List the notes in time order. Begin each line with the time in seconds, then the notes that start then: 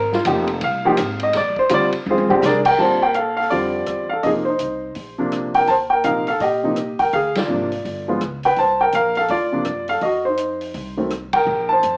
Already playing: G#1 A#4
0.12 F4, snare
0.25 F1 F3 A#3 D#4 G4, hi-hat pedal, ride
0.47 ride
0.61 C2 F5, ride
0.85 F3 A#3 D#4 G4
0.97 G#1, hi-hat pedal, ride
1.19 D#5, ride
1.33 A#1 D5, snare, ride
1.56 C5, muted upright bass stroke, kick
1.69 D2 D3 G3 C4 F4, hi-hat pedal, ride
1.74 D5
1.92 muted upright bass stroke, ride
2.06 F2, high tom
2.10 C4 F4 G#4 C5
2.18 high tom
2.29 D3 G3 C4 G4, floor tom
2.42 C3 D5, snare, hi-hat pedal
2.46 D4 G#4 A#4
2.65 A#4 G5, kick, crash
2.78 A#2 D3 G3 C4 F4 C5 A5
3.02 A#4 G5
3.14 F5, closed hi-hat
3.18 A4
3.36 A4 F5, open hi-hat
3.50 F2 D3 G3 C4 F4 D5, open hi-hat
3.86 E2, cross-stick, closed hi-hat
4.09 A4 F5
4.23 F2 C3 F3 A#3 D#4 G#4 D#5, open hi-hat
4.45 D#4 C5
4.59 C2, closed hi-hat
4.95 A#1, open hi-hat
5.18 C3 F3 A#3 D4
5.32 cross-stick, closed hi-hat
5.54 A#4 G5, open hi-hat
5.67 D#2 C5 A5, open hi-hat
5.90 A#4 G5
6.04 A#2 C3 F3 A#3 D#4 A#4 F5, closed hi-hat
6.27 A4 F5, open hi-hat
6.40 A#2 G4 D#5, open hi-hat
6.64 C3 F3 A#3 D#4
6.76 cross-stick, closed hi-hat
6.99 D#2 A#4 G5, open hi-hat
7.13 D2 G#4 F5, open hi-hat
7.35 F4 D5, snare, ride
7.49 G#1 C3 F3 A#3 D4
7.72 open hi-hat
7.85 G1, open hi-hat
8.08 F3 G#3 B3 F4
8.21 C#2, cross-stick, closed hi-hat
8.43 B4 G5, open hi-hat
8.56 C2 C5 A5, open hi-hat
8.81 A#4 G5
8.92 A#1 A#4 F5, closed hi-hat
9.15 A4 F5, open hi-hat
9.28 D#2 F4 D5, open hi-hat
9.52 C3 F3 A#3 D4
9.65 F#2, cross-stick, closed hi-hat
9.88 A4 F5, open hi-hat
10.01 F2 F#4 D#5, open hi-hat
10.25 D#4 C5
10.37 closed hi-hat
10.61 open hi-hat
10.74 C2, open hi-hat
10.97 D#3 F#3 A3 C4
11.10 cross-stick, closed hi-hat
11.33 A#4 G5, kick, ride
11.47 A#1
11.69 C5 A5
11.83 F2, closed hi-hat